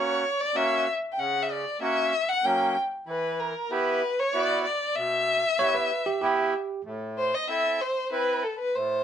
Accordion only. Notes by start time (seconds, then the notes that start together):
Already playing: A#3 C#4 F#4
0.55 A#3 C#4 F#4
1.18 C#3
1.80 A#3 C#4 F#4
2.44 F#3 A#3 C#4
3.07 E3
3.71 B3 E4 G4
4.34 B3 E4 F#4
4.97 B2
5.59 B3 E4 G4
6.22 B3 E4 G4
6.85 A2
7.48 C4 E4 A4
8.11 C4 E4 B4
8.76 A2